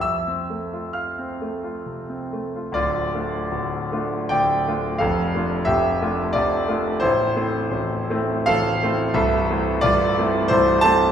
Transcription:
<<
  \new Staff \with { instrumentName = "Grand piano" } { \time 3/4 \key f \major \tempo 4 = 87 <e'' e'''>4 <f'' f'''>4. r8 | \key d \minor <f' d''>2 <d'' g''>4 | <a' f''>4 <g' e''>4 <f' d''>4 | <e' c''>2 <a' f''>4 |
<a' e''>4 <f' d''>4 <e' c''>8 <c'' a''>8 | }
  \new Staff \with { instrumentName = "Grand piano" } { \time 3/4 \key f \major f,16 c'16 a16 f'8 c'16 a16 f'16 c16 c'16 a16 f'16 | \key d \minor <d,, d,>8 <a d' f'>8 <d,, d,>8 <a d' f'>8 <d,, d,>8 <a d' f'>8 | <f,, f,>8 <a d' f'>8 <f,, f,>8 <a d' f'>8 <f,, f,>8 <a d' f'>8 | <a,,, a,,>8 <a c' e'>8 <a,,, a,,>8 <a c' e'>8 <a,,, a,,>8 <a c' e'>8 |
<c,, c,>8 <a c' e'>8 <c,, c,>8 <a c' e'>8 <c,, c,>8 <a c' e'>8 | }
>>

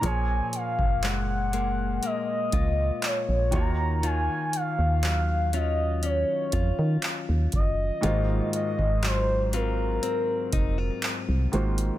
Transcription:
<<
  \new Staff \with { instrumentName = "Soft synth lead" } { \time 4/4 \key ees \dorian \tempo 4 = 60 aes''8 f''8 ges''4 ees''4 des''8 bes''8 | aes''8 f''4 ees''8 des''4 r8 ees''8~ | ees''8 ees''8 c''8 bes'2 r8 | }
  \new Staff \with { instrumentName = "Felt piano" } { \time 4/4 \key ees \dorian <bes, f bes aes' des''>2.~ <bes, f bes aes' des''>8 <ees bes f' ges' des''>8~ | <ees bes f' ges' des''>2.~ <ees bes f' ges' des''>8 r8 | <aes, ees bes f' ges' c''>2.~ <aes, ees bes f' ges' c''>8 <aes, ees bes f' ges' c''>8 | }
  \new Staff \with { instrumentName = "Clean electric guitar" } { \time 4/4 \key ees \dorian bes,4 aes8 <aes bes>8 bes8 f'4 ees8 | <ees f'>4 ges8 <ges des' f'>8 des'8 f'4. | <aes, f'>4 ges8 <ges c' f'>8 c'8 ees'16 f'4~ f'16 | }
  \new Staff \with { instrumentName = "FM bass" } { \clef bass \time 4/4 \key ees \dorian bes,,8 r16 ges,,4~ ges,,16 r8 des,8 r16 bes,,16 ees,8~ | ees,8 r16 ees,4. r16 f,16 ees16 r16 ees,16 ges,,8 | aes,,8 r16 aes,,4~ aes,,16 r8 f,,8 r16 c,16 aes,,8 | }
  \new DrumStaff \with { instrumentName = "Drums" } \drummode { \time 4/4 hh8 hh16 bd16 <hc hh>8 hh8 hh8 <hh bd>8 <hc hh>8 <hh bd>8 | hh8 hh8 <hc hh>8 hh8 hh8 <hh bd>8 <hc hh>8 <hh bd>8 | hh8 hh16 bd16 <hc hh>8 hh8 hh8 <hh bd>8 <hc hh>8 hh16 hh16 | }
>>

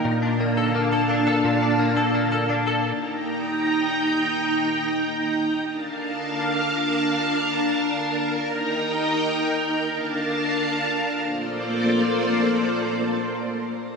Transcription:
<<
  \new Staff \with { instrumentName = "String machine" } { \time 4/4 \key bes \major \tempo 4 = 86 << { <d' f'' a''>1 | <ees' g'' bes''>1 | <d' f'' a''>1 | <ees' g'' bes''>2 <d' f'' a''>2 |
<bes f' a' c'' d''>1 | } \\ { bes1~ | bes1 | bes'1~ | bes'1 |
r1 | } >> }
  \new Staff \with { instrumentName = "Clean electric guitar" } { \time 4/4 \key bes \major bes,16 d'16 bes16 a'16 bes16 a'16 d'16 a'16 bes,16 d'16 bes16 a'16 bes16 a'16 d'16 a'16 | r1 | r1 | r1 |
r1 | }
>>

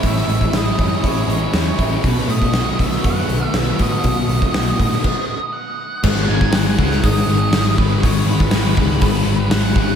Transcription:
<<
  \new Staff \with { instrumentName = "Lead electric guitar" } { \time 4/4 \key gis \phrygian \tempo 4 = 120 e''4 dis''4 cis''4 cis''8. r16 | b'8 dis''4 e''8 fis''4 e''8 dis''8~ | dis''2. fis''4 | fis''8 gis''8 fis''4 dis''4. b'8 |
cis''8 b'2~ b'8 fis''4 | }
  \new Staff \with { instrumentName = "Overdriven electric guitar" } { \time 4/4 \key gis \phrygian <a, gis cis' e'>8 gis8 e'8 cis'8 e'8 gis8 cis'8 e'8 | b,8 a8 fis'8 b8 fis'8 a8 b8 fis'8 | b,8 a8 fis'8 b8 r2 | r1 |
r1 | }
  \new Staff \with { instrumentName = "Distorted electric guitar" } { \clef bass \time 4/4 \key gis \phrygian <a, e cis' e'>4 gis8 e8 cis'8 e8 cis'8 e'8 | b,4 a8 dis8 b8 dis8 b8 fis'8 | b,4 a8 dis8 r2 | <gis, dis gis>4 <gis, dis gis>8 <dis gis>8 <gis, dis gis>4 <gis, dis gis>8 <dis gis>8 |
<gis, dis gis>4 <gis, dis gis>8 <dis gis>8 <gis, dis gis>4 <gis, dis gis>8 <dis gis>8 | }
  \new Staff \with { instrumentName = "Overdriven electric guitar" } { \clef bass \time 4/4 \key gis \phrygian r1 | r1 | r1 | <gis, dis gis>8 <gis, dis gis>8 <gis, dis gis>8 <gis, dis gis>8 <gis, dis gis>8 <gis, dis gis>8 <gis, dis gis>8 <gis, dis gis>8 |
<gis, dis gis>8 <gis, dis gis>8 <gis, dis gis>8 <gis, dis gis>8 <gis, dis gis>8 <gis, dis gis>8 <gis, dis gis>8 <gis, dis gis>8 | }
  \new Staff \with { instrumentName = "Picked electric bass" } { \clef bass \time 4/4 \key gis \phrygian a,,8 a,,8 a,,8 fis,8 a,,8 a,,8 e,8 a,,8 | b,,8 a,8 b,,8 b,,8 fis,8 b,,8 b,,8 a,8 | b,,8 b,,8 b,,8 a,8 r2 | gis,,8 gis,,8 gis,,8 cis,8 gis,,8 gis,,8 gis,,8 gis,,8 |
gis,,8 gis,,8 gis,,8 cis,8 gis,,8 gis,,8 gis,,8 gis,,8 | }
  \new DrumStaff \with { instrumentName = "Drums" } \drummode { \time 4/4 <hho bd>16 sn16 hho16 bd16 <hho sn>8 <hho bd>8 <hho bd>8 hho8 <hho sn>8 <hho bd>8 | <hho bd>16 sn16 hho16 bd16 <hho sn>8 <hho bd>16 sn16 <hho bd>8 hho8 <hho sn>8 <hho bd>8 | <hho bd>8 hho16 bd16 <hho sn>8 <hho bd>16 sn16 <cymc bd>4 r4 | <cymc bd>16 sn8 bd16 <hho sn>8 bd16 sn16 <hho bd>4 <hho sn>8 bd8 |
<hho bd>8. bd16 <hho sn>8 bd8 <hho bd>4 <hho sn>8 bd8 | }
>>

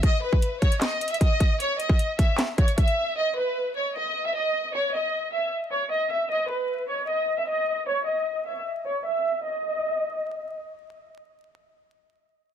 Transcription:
<<
  \new Staff \with { instrumentName = "Violin section" } { \time 4/4 \key dis \phrygian \tempo 4 = 153 dis''8 b'4 cis''8 dis''8. e''16 dis''4 | cis''8 dis''4 e''8 r8 cis''8 e''4 | dis''8 b'4 cis''8 dis''8. e''16 dis''4 | cis''8 dis''4 e''8 r8 cis''8 dis''8 e''8 |
dis''8 b'4 cis''8 dis''8. e''16 dis''4 | cis''8 dis''4 e''8 r8 cis''8 e''4 | dis''2. r4 | r1 | }
  \new DrumStaff \with { instrumentName = "Drums" } \drummode { \time 4/4 <hh bd>8. bd16 hh8 <hh bd>16 hh16 \tuplet 3/2 { <hc hh sn>16 r16 r16 hh16 hh16 hh16 } <hh bd>8 <hh bd>8 | hh8 hh16 bd16 hh8 <hh bd>8 <hc hh sn>8 <hh bd>16 hh16 <hh bd>16 hh8. | r4 r4 r4 r4 | r4 r4 r4 r4 |
r4 r4 r4 r4 | r4 r4 r4 r4 | r4 r4 r4 r4 | r4 r4 r4 r4 | }
>>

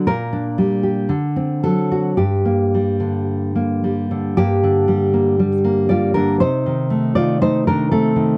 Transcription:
\new Staff \with { instrumentName = "Nylon-string guitar" } { \time 2/4 \key g \minor \tempo 4 = 58 << { bes'4. a'8 | g'4 r4 | <bes g'>4. <f' d''>16 <d' bes'>16 | <ees' c''>8. <f' d''>16 <ees' c''>16 <d' bes'>16 <c' a'>8 | } \\ { bes,16 d'16 g16 g'16 d16 c'16 fis16 fis'16 | g,16 bes16 g16 d8 bes16 g16 d16 | g,16 d16 g16 bes16 g16 bes16 g16 d16 | c16 ees16 a16 ees16 a16 ees16 a16 ees16 | } >> }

